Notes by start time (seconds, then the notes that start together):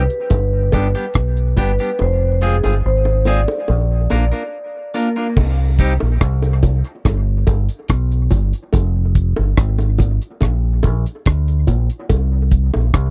Already playing: B4
0.10 closed hi-hat
0.30 G1, kick, closed hi-hat, high bongo
0.72 G1 G3 B3 D4 G4, kick, closed hi-hat, high bongo
0.95 G3 B3 D4 G4, closed hi-hat
1.14 B1, kick, cross-stick, closed hi-hat
1.37 closed hi-hat
1.56 G1 G3 B3 D4 G4, kick, closed hi-hat, low bongo
1.61 B4
1.79 G3 B3 D4 G4, closed hi-hat
1.99 F1 C5, high bongo
2.41 G#3 C4 F4 G#4
2.64 G1 G#3 C4 F4 G#4, high bongo
2.85 G#1 C5
3.05 high bongo
3.25 G#3 C4 F4 G#4 D5, high bongo, low bongo
3.48 high bongo
3.68 A#1, high bongo
4.10 A#1 A#3 D4 F4 A#4, high bongo
4.32 A#3 D4 F4 A#4
4.94 A#3 D4 F4 A#4
5.16 A#3 D4 F4 A#4
5.37 C2, kick, crash, high bongo
5.79 G3 C4 D#4 G4, kick, closed hi-hat
6.00 A#1, high bongo
6.21 C2, kick, cross-stick, closed hi-hat
6.42 closed hi-hat, high bongo
6.63 kick, closed hi-hat, high bongo, low bongo
6.84 closed hi-hat
7.05 G1, kick, cross-stick, closed hi-hat, high bongo
7.47 G1, kick, closed hi-hat, high bongo
7.69 closed hi-hat
7.88 B1, kick, cross-stick, closed hi-hat
8.12 closed hi-hat
8.31 G1, kick, closed hi-hat, low bongo
8.53 closed hi-hat
8.73 F1, kick, closed hi-hat, high bongo
9.15 kick, closed hi-hat
9.36 G1, high bongo
9.57 G#1, kick, cross-stick, closed hi-hat
9.78 closed hi-hat, high bongo
9.98 kick, closed hi-hat, high bongo, low bongo
10.22 closed hi-hat
10.41 A#1, kick, cross-stick, closed hi-hat, high bongo
10.83 A#1, kick, closed hi-hat, high bongo
11.06 closed hi-hat
11.26 D2, kick, cross-stick, closed hi-hat
11.48 closed hi-hat
11.67 A#1, kick, closed hi-hat, low bongo
11.90 closed hi-hat
12.10 C2, kick, closed hi-hat, high bongo
12.51 kick, closed hi-hat
12.74 A#1, high bongo
12.94 C2, kick, cross-stick, closed hi-hat